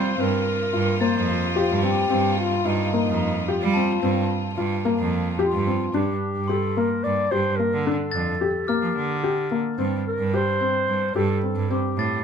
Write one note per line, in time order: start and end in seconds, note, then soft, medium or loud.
0.00 5.90 C3 medium
0.00 5.91 A#3 medium
0.00 0.13 C4 medium
0.00 5.91 F4 medium
0.00 0.22 C5 medium
0.18 0.39 G2 medium
0.18 0.63 C4 medium
0.18 1.01 A#4 medium
0.73 1.05 G2 medium
0.73 0.96 F4 medium
1.01 1.45 A#3 medium
1.01 1.79 C5 medium
1.01 2.22 A6 soft
1.14 1.56 F2 medium
1.56 1.85 F4 medium
1.56 1.78 G4 medium
1.69 2.00 G2 medium
1.83 2.05 C4 medium
1.83 2.38 G4 loud
2.09 2.51 G2 medium
2.09 2.55 C4 medium
2.40 2.68 F4 medium
2.65 2.86 G2 medium
2.65 3.48 D#4 medium
2.65 2.88 F4 medium
2.93 3.38 A#3 medium
3.07 3.48 F2 medium
3.48 4.54 F4 medium
3.48 3.70 G4 medium
3.61 3.93 G3 medium
3.74 3.98 C4 medium
3.74 4.95 A5 medium
4.03 4.23 G2 medium
4.03 4.47 C4 medium
4.57 4.88 G2 medium
4.57 4.80 F4 medium
4.85 5.29 A#3 medium
4.98 5.40 F2 medium
5.39 5.98 F4 medium
5.39 5.62 G4 medium
5.52 5.84 G2 medium
5.67 5.89 C4 medium
5.93 6.15 G2 medium
5.93 6.39 D4 medium
5.93 6.52 G4 medium
6.36 6.87 G2 medium
6.48 6.72 G4 medium
6.48 6.79 A4 medium
6.48 7.69 C6 soft
6.77 7.21 A#3 medium
6.77 7.05 A#4 medium
7.04 7.25 G2 medium
7.04 7.33 D5 medium
7.31 7.53 G2 medium
7.31 7.54 G4 medium
7.31 7.58 C5 medium
7.56 7.81 A#3 medium
7.56 7.87 A#4 medium
7.73 7.94 D3 medium
7.86 8.31 D4 medium
7.86 8.69 A4 medium
8.11 8.34 F2 medium
8.11 9.33 A6 medium
8.41 8.63 G4 medium
8.68 9.13 A#3 medium
8.68 9.51 G4 medium
8.68 9.89 F6 medium
8.81 8.92 F3 medium
8.96 9.58 D3 medium
9.24 9.46 G4 medium
9.51 9.73 A#3 medium
9.78 9.99 G2 medium
9.78 10.23 C4 medium
10.08 10.36 A#4 medium
10.19 10.71 G2 medium
10.34 10.56 G4 medium
10.34 11.14 C5 loud
10.61 11.05 C4 medium
10.88 11.09 G2 medium
11.15 11.36 G2 medium
11.15 11.38 G4 medium
11.15 11.66 A4 medium
11.43 11.65 C4 medium
11.56 11.77 G2 medium
11.70 12.15 C4 medium
11.70 12.24 G4 medium
11.97 12.18 A2 medium
11.97 12.24 A6 medium